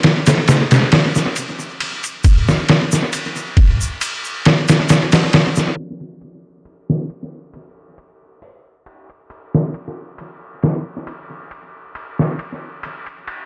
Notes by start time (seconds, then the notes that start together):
0.03 snare, ride
0.26 snare, ride, shaker
0.48 snare, ride, shaker
0.71 snare, ride, shaker
0.92 snare, ride
1.15 snare, shaker
1.36 ride, shaker
1.59 shaker
1.80 ride
2.04 ride, shaker
2.24 kick, ride, shaker
2.48 snare, shaker
2.69 snare, ride
2.92 snare, shaker
3.13 ride, shaker
3.36 shaker
3.57 kick, ride
3.81 shaker
4.01 ride, shaker
4.24 shaker
4.45 snare, ride
4.68 snare, ride, shaker
4.89 snare, ride, shaker
5.12 snare, ride, shaker
5.33 snare, ride
5.56 snare, shaker
5.77 ride
6.00 ride
6.21 ride
6.65 ride
6.90 snare
7.10 ride
7.54 ride
7.98 ride
8.42 open hi-hat
8.86 ride
9.10 ride
9.30 ride
9.54 snare
9.74 ride
10.18 ride
10.63 snare, ride
11.07 ride
11.51 ride
11.95 ride
12.19 snare
12.39 ride
12.83 ride, shaker
13.06 ride, shaker
13.27 ride